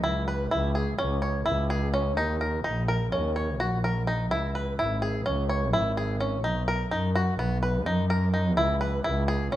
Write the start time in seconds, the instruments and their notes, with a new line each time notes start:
0.04 double bass C#2, five-string banjo E4
0.28 five-string banjo B4
0.51 double bass C#2, five-string banjo E4
0.75 five-string banjo G#4
0.98 double bass C#2, five-string banjo C#4
1.22 five-string banjo C#5
1.46 double bass C#2, five-string banjo E4
1.70 five-string banjo G#4
1.94 five-string banjo C#4
2.17 double bass D#2, five-string banjo D#4
2.41 five-string banjo A#4
2.64 double bass A#1, five-string banjo D#4
2.88 five-string banjo A#4
3.12 double bass D#2, five-string banjo C#4
3.36 five-string banjo C#5
3.60 double bass A#1, five-string banjo F#4
3.84 five-string banjo A#4
4.07 five-string banjo D#4
4.31 double bass C#2, five-string banjo E4
4.55 five-string banjo B4
4.79 double bass G#1, five-string banjo E4
5.02 five-string banjo G#4
5.26 double bass C#2, five-string banjo C#4
5.49 five-string banjo C#5
5.73 double bass G#1, five-string banjo E4
5.97 five-string banjo G#4
6.20 five-string banjo C#4
6.44 double bass B1, five-string banjo D#4
6.68 five-string banjo A#4
6.91 double bass F#2, five-string banjo D#4
7.15 five-string banjo F#4
7.39 double bass B1, five-string banjo B3
7.63 five-string banjo B4
7.86 double bass F#2, five-string banjo D#4
8.10 five-string banjo A#4
8.34 five-string banjo D#4
8.57 double bass C#2, five-string banjo E4
8.81 five-string banjo B4
9.04 double bass C#2, five-string banjo E4
9.28 five-string banjo G#4
9.52 double bass C#2, five-string banjo C#4